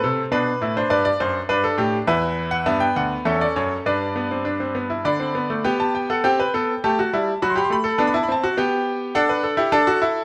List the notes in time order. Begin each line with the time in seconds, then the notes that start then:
Already playing: C4
0.04 C3 A4
0.31 B2 D4 B4
0.61 A2 E4
0.77 D4 C5
0.90 G2 B4 D5
1.05 D5
1.20 F#2 C5
1.49 G2 D4 B4
1.64 A4
1.78 A2 G4
2.07 E2 E4 B4 E5
2.51 F#5
2.66 G2 B3 E5
2.80 G5
2.96 D2 F#5
3.25 E2 C#4 A4 E5
3.41 D5
3.56 F#2 C#5
3.86 G2 D4 B4 D5
4.16 B3
4.31 C4
4.45 D4
4.60 C4
4.75 B3
4.90 E4
5.05 D3 D4 D5 B5
5.20 C4
5.35 B3
5.50 A3
5.64 B3 G4 G5
5.80 A5
5.95 G5
6.10 A4 F#5
6.24 C4 G4 G5
6.40 B4
6.54 B3 A4
6.84 A3 G4 A5
6.99 F#4
7.13 G3 E4
7.42 F#3 F#4 B5
7.50 C6
7.56 G4 B5
7.64 C6
7.70 A3 B5
7.84 A4
7.98 B3 D4 A5
8.07 B5
8.14 E4 A5
8.23 B5
8.29 C4 A5
8.44 F#4
8.57 B3 G4 G5
9.15 D4 A4 F#5
9.29 B4
9.43 A4
9.57 E4 G4
9.72 D4 A4 A5
9.87 F#4
10.02 E4